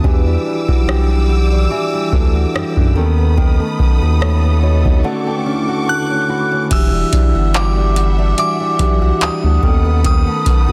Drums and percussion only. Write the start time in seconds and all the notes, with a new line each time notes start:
0.04 kick
0.69 kick
0.89 cross-stick
2.13 kick
2.56 cross-stick
2.77 kick
3.38 kick
3.79 kick
4.22 cross-stick
4.85 kick
6.71 kick, closed hi-hat, crash
7.13 kick, closed hi-hat
7.54 clap, closed hi-hat
7.96 closed hi-hat
8.38 closed hi-hat
8.79 kick, closed hi-hat
9.21 clap, closed hi-hat
9.63 kick
10.04 kick, closed hi-hat
10.46 kick, closed hi-hat